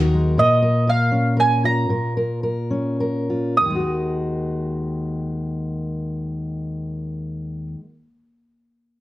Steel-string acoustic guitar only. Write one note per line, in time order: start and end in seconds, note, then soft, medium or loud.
0.00 0.39 D#2 medium
0.00 0.38 D#3 medium
0.00 0.35 F#4 medium
0.00 0.38 A#4 medium
0.14 0.38 G#3 soft
0.38 1.88 A#2 medium
0.38 0.62 A#4 medium
0.62 0.87 A#4 medium
0.87 1.36 A#4 medium
1.12 1.86 C#4 soft
1.37 1.90 A#4 medium
1.64 3.29 F4 soft
1.89 3.58 A#2 medium
1.89 2.16 A#4 soft
2.17 2.42 A#4 soft
2.43 2.99 A#4 medium
2.71 3.55 C#4 soft
3.00 3.55 A#4 medium
3.30 3.55 F4 soft
3.60 7.74 D#2 soft
3.65 7.79 D#3 soft
3.70 7.84 G#3 soft
3.75 7.89 F#4 soft
3.80 7.94 A#4 soft